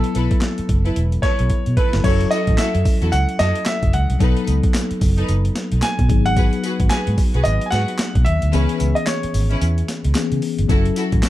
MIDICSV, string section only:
0, 0, Header, 1, 2, 480
1, 0, Start_track
1, 0, Tempo, 540541
1, 1813, Time_signature, 4, 2, 24, 8
1, 10026, End_track
2, 0, Start_track
2, 0, Title_t, "String section"
2, 0, Program_c, 0, 48
2, 130, Note_on_c, 0, 64, 76
2, 133, Note_on_c, 0, 69, 74
2, 136, Note_on_c, 0, 71, 83
2, 274, Note_off_c, 0, 64, 0
2, 275, Note_off_c, 0, 69, 0
2, 277, Note_off_c, 0, 71, 0
2, 752, Note_on_c, 0, 64, 77
2, 755, Note_on_c, 0, 69, 67
2, 759, Note_on_c, 0, 71, 80
2, 850, Note_off_c, 0, 64, 0
2, 851, Note_off_c, 0, 69, 0
2, 853, Note_off_c, 0, 71, 0
2, 1091, Note_on_c, 0, 64, 74
2, 1094, Note_on_c, 0, 69, 71
2, 1096, Note_on_c, 0, 71, 80
2, 1234, Note_off_c, 0, 64, 0
2, 1236, Note_off_c, 0, 69, 0
2, 1237, Note_off_c, 0, 71, 0
2, 1570, Note_on_c, 0, 64, 69
2, 1573, Note_on_c, 0, 69, 69
2, 1575, Note_on_c, 0, 71, 81
2, 1714, Note_off_c, 0, 64, 0
2, 1715, Note_off_c, 0, 69, 0
2, 1716, Note_off_c, 0, 71, 0
2, 1812, Note_on_c, 0, 64, 92
2, 1814, Note_on_c, 0, 66, 87
2, 1817, Note_on_c, 0, 69, 100
2, 1955, Note_off_c, 0, 64, 0
2, 1956, Note_off_c, 0, 66, 0
2, 1957, Note_off_c, 0, 69, 0
2, 2051, Note_on_c, 0, 64, 76
2, 2055, Note_on_c, 0, 66, 67
2, 2057, Note_on_c, 0, 69, 92
2, 2194, Note_off_c, 0, 64, 0
2, 2196, Note_off_c, 0, 66, 0
2, 2197, Note_off_c, 0, 69, 0
2, 2292, Note_on_c, 0, 64, 76
2, 2295, Note_on_c, 0, 66, 63
2, 2297, Note_on_c, 0, 69, 85
2, 2435, Note_off_c, 0, 64, 0
2, 2436, Note_off_c, 0, 66, 0
2, 2437, Note_off_c, 0, 69, 0
2, 2677, Note_on_c, 0, 64, 72
2, 2678, Note_on_c, 0, 66, 71
2, 2681, Note_on_c, 0, 69, 86
2, 2772, Note_off_c, 0, 64, 0
2, 2772, Note_off_c, 0, 66, 0
2, 2774, Note_off_c, 0, 69, 0
2, 3012, Note_on_c, 0, 64, 78
2, 3015, Note_on_c, 0, 66, 70
2, 3018, Note_on_c, 0, 69, 86
2, 3155, Note_off_c, 0, 64, 0
2, 3156, Note_off_c, 0, 66, 0
2, 3158, Note_off_c, 0, 69, 0
2, 3733, Note_on_c, 0, 63, 87
2, 3735, Note_on_c, 0, 69, 81
2, 3738, Note_on_c, 0, 71, 102
2, 3958, Note_off_c, 0, 63, 0
2, 3959, Note_off_c, 0, 69, 0
2, 3960, Note_off_c, 0, 71, 0
2, 4596, Note_on_c, 0, 63, 81
2, 4598, Note_on_c, 0, 69, 68
2, 4600, Note_on_c, 0, 71, 89
2, 4691, Note_off_c, 0, 63, 0
2, 4692, Note_off_c, 0, 69, 0
2, 4693, Note_off_c, 0, 71, 0
2, 5650, Note_on_c, 0, 66, 87
2, 5654, Note_on_c, 0, 68, 86
2, 5656, Note_on_c, 0, 71, 100
2, 5794, Note_off_c, 0, 66, 0
2, 5796, Note_off_c, 0, 68, 0
2, 5797, Note_off_c, 0, 71, 0
2, 5892, Note_on_c, 0, 66, 85
2, 5895, Note_on_c, 0, 68, 75
2, 5897, Note_on_c, 0, 71, 88
2, 6035, Note_off_c, 0, 66, 0
2, 6036, Note_off_c, 0, 68, 0
2, 6037, Note_off_c, 0, 71, 0
2, 6130, Note_on_c, 0, 66, 69
2, 6133, Note_on_c, 0, 68, 68
2, 6136, Note_on_c, 0, 71, 81
2, 6274, Note_off_c, 0, 66, 0
2, 6275, Note_off_c, 0, 68, 0
2, 6277, Note_off_c, 0, 71, 0
2, 6515, Note_on_c, 0, 66, 75
2, 6519, Note_on_c, 0, 68, 70
2, 6521, Note_on_c, 0, 71, 83
2, 6611, Note_off_c, 0, 66, 0
2, 6613, Note_off_c, 0, 68, 0
2, 6614, Note_off_c, 0, 71, 0
2, 6852, Note_on_c, 0, 66, 78
2, 6855, Note_on_c, 0, 68, 70
2, 6857, Note_on_c, 0, 71, 81
2, 6995, Note_off_c, 0, 66, 0
2, 6996, Note_off_c, 0, 68, 0
2, 6997, Note_off_c, 0, 71, 0
2, 7574, Note_on_c, 0, 61, 95
2, 7576, Note_on_c, 0, 64, 78
2, 7579, Note_on_c, 0, 71, 100
2, 7799, Note_off_c, 0, 61, 0
2, 7799, Note_off_c, 0, 64, 0
2, 7801, Note_off_c, 0, 71, 0
2, 8438, Note_on_c, 0, 61, 79
2, 8442, Note_on_c, 0, 64, 70
2, 8444, Note_on_c, 0, 71, 85
2, 8532, Note_off_c, 0, 61, 0
2, 8534, Note_off_c, 0, 64, 0
2, 8535, Note_off_c, 0, 71, 0
2, 9494, Note_on_c, 0, 64, 94
2, 9497, Note_on_c, 0, 66, 81
2, 9499, Note_on_c, 0, 69, 96
2, 9636, Note_off_c, 0, 64, 0
2, 9637, Note_off_c, 0, 66, 0
2, 9638, Note_off_c, 0, 69, 0
2, 9734, Note_on_c, 0, 64, 77
2, 9737, Note_on_c, 0, 66, 76
2, 9740, Note_on_c, 0, 69, 89
2, 9876, Note_off_c, 0, 64, 0
2, 9877, Note_off_c, 0, 66, 0
2, 9879, Note_off_c, 0, 69, 0
2, 9974, Note_on_c, 0, 64, 74
2, 9977, Note_on_c, 0, 66, 65
2, 9979, Note_on_c, 0, 69, 77
2, 10026, Note_off_c, 0, 64, 0
2, 10026, Note_off_c, 0, 66, 0
2, 10026, Note_off_c, 0, 69, 0
2, 10026, End_track
0, 0, End_of_file